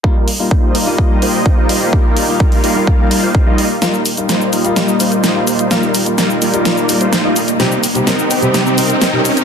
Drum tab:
HH |--o---o---o---o-|--o--oo---o---o-|x-oxx-oxx-oxx-ox|x-oxx-oxx-oxx-ox|
SH |----------------|----------------|xxxxxxxxxxxxx-xx|xxxxxxxxxxxxx-xx|
SD |----------------|----------------|o---o---o---o---|o---o---o---o---|
BD |o---o---o---o---|o---o---o---o---|----------------|----------------|

HH |x-oxx-oxx-oxx-ox|
SH |xxxxxxxxxxxxx-xx|
SD |o---o---o---o---|
BD |----------------|